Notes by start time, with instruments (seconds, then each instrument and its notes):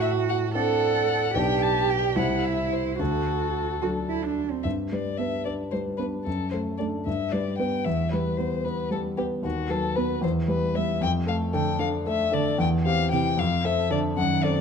Already playing: grand piano A2, cello F#4
0.02 violin E5
0.29 violin F#5
0.54 grand piano C4 D4 D5, cello A4, violin F#5
1.35 grand piano B1 B3 D4 D5, cello G4, violin G5
1.62 violin A5
1.90 violin G5
2.16 grand piano C2 G3 E4 C5, cello E4, violin F#5
2.45 violin E5
2.72 violin C5
2.99 grand piano D2, cello F#4, violin A4
3.82 grand piano F#3 D4 A4, cello F#4
4.09 cello E4
4.22 cello D4
4.51 cello C4
4.63 grand piano G2, violin E5
4.92 grand piano G3 B4, violin D5
5.18 cello B3, grand piano D4 B4, violin E5
5.45 grand piano D4 B4, violin D5
5.71 grand piano G3 B4, violin C5
5.97 cello B3, grand piano D4 B4, violin B4
6.24 grand piano F#2, violin A4
6.51 grand piano A3 A4, violin C5
6.78 cello A3, grand piano D4 A4, violin D5
7.05 grand piano G2, violin E5
7.32 grand piano G3 B4, violin D5
7.58 cello B3, grand piano B3 B4, violin G5
7.84 grand piano E2, violin E5
8.12 grand piano G3 B4, violin B4
8.38 grand piano B3 B4, cello B3, violin C5
8.65 grand piano B3 B4, violin B4
8.90 grand piano G3 B4, violin A4
9.18 grand piano B3 B4, cello B3, violin G4
9.43 grand piano D#2, violin F#4
9.70 grand piano F#3 B4, violin A4
9.96 grand piano B3 B4, cello B3, violin B4
10.21 grand piano E2, violin C5
10.48 grand piano G3 B4, violin B4
10.74 cello G3, grand piano B3 B4, violin E5
11.01 grand piano F2, violin G5
11.26 grand piano A3 A4, violin F5
11.53 cello D3, grand piano D4 A4, violin G5
11.79 grand piano D4 A4, violin F5
12.06 grand piano A3 A4, violin E5
12.31 cello D3, grand piano D4 A4, violin D5
12.58 grand piano E2, violin G5
12.86 grand piano C4 G4, violin F5
13.12 cello C3, grand piano E4 G4, violin G5
13.37 grand piano F2, violin F5
13.64 grand piano C4 A4, violin E5
13.90 cello D3, grand piano D4 A4, violin D5
14.16 grand piano F#2, cello D#3, violin F#5
14.43 grand piano C4 A4, violin D5
14.57 cello F#3